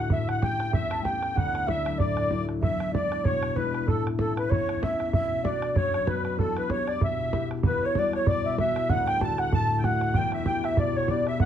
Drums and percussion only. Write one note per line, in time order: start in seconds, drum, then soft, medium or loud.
0.10 bodhran medium
0.29 bodhran medium
0.42 bodhran medium
0.60 bodhran medium
0.73 bodhran medium
0.91 bodhran medium
0.99 bodhran soft
1.05 bodhran medium
1.23 bodhran medium
1.37 bodhran medium
1.55 bodhran medium
1.68 bodhran medium
1.86 bodhran medium
2.00 bodhran medium
2.17 bodhran medium
2.24 bodhran soft
2.31 bodhran medium
2.49 bodhran soft
2.63 bodhran medium
2.80 bodhran medium
2.95 bodhran medium
3.12 bodhran medium
3.25 bodhran medium
3.43 bodhran medium
3.49 bodhran soft
3.56 bodhran medium
3.74 bodhran medium
3.88 bodhran medium
4.07 bodhran medium
4.19 bodhran medium
4.37 bodhran medium
4.51 bodhran medium
4.69 bodhran medium
4.76 bodhran soft
4.83 bodhran medium
5.00 bodhran soft
5.13 bodhran medium
5.45 bodhran medium
5.62 bodhran medium
5.76 bodhran medium
5.94 bodhran medium
6.00 bodhran soft
6.07 bodhran medium
6.25 bodhran medium
6.39 bodhran medium
6.57 bodhran medium
6.70 bodhran medium
6.88 bodhran medium
7.01 bodhran medium
7.26 bodhran soft
7.33 bodhran medium
7.51 bodhran medium
7.63 bodhran medium
7.95 bodhran medium
8.13 bodhran medium
8.27 bodhran medium
8.58 bodhran medium
8.76 bodhran medium
8.89 bodhran medium
9.08 bodhran medium
9.21 bodhran medium
9.38 bodhran medium
9.53 bodhran medium
9.84 bodhran medium
10.01 bodhran medium
10.14 bodhran medium
10.32 bodhran medium
10.46 bodhran medium
10.64 bodhran medium
10.77 bodhran medium
11.08 bodhran medium
11.27 bodhran soft
11.40 bodhran medium